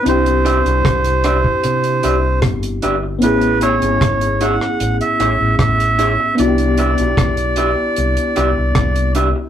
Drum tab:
HH |xxxxxxx-xxx-xxx-|xxxxxxx-xxx-xxx-|xxxxxxx-xxx-xxx-|
SD |----r-r-----r---|----r--r----r---|----r-------r---|
BD |----o--o----o---|----o-------o---|----o-------o---|